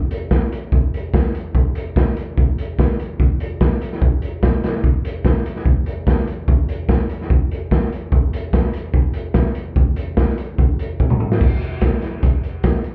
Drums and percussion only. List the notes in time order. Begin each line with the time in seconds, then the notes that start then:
0.11 closed hi-hat
0.31 kick, snare
0.52 closed hi-hat
0.72 kick
0.94 closed hi-hat
1.14 kick, snare
1.35 closed hi-hat
1.55 kick
1.75 closed hi-hat
1.96 kick, snare
2.17 closed hi-hat
2.38 kick
2.58 closed hi-hat
2.79 kick, snare
2.99 closed hi-hat
3.20 kick
3.40 closed hi-hat
3.61 kick, snare
3.82 closed hi-hat
3.92 snare
4.02 kick
4.22 closed hi-hat
4.43 kick, snare
4.64 snare, closed hi-hat
4.84 kick
5.05 closed hi-hat
5.25 kick, snare
5.46 closed hi-hat
5.56 snare
5.66 kick
5.86 closed hi-hat
6.07 kick, snare
6.27 closed hi-hat
6.48 kick
6.69 closed hi-hat
6.89 kick, snare
7.10 closed hi-hat
7.21 snare
7.30 kick
7.51 closed hi-hat
7.71 kick, snare
7.92 closed hi-hat
8.12 kick
8.33 closed hi-hat
8.53 kick, snare
8.73 closed hi-hat
8.94 kick
9.14 closed hi-hat
9.34 kick, snare
9.55 closed hi-hat
9.76 kick
9.96 closed hi-hat
10.17 kick, snare
10.38 closed hi-hat
10.58 kick
10.79 closed hi-hat
11.00 kick
11.10 mid tom
11.20 mid tom
11.32 snare
11.41 kick, crash
11.61 closed hi-hat
11.81 kick, snare, closed hi-hat
12.02 snare, closed hi-hat
12.23 kick, closed hi-hat
12.43 closed hi-hat
12.63 kick, snare, closed hi-hat
12.84 closed hi-hat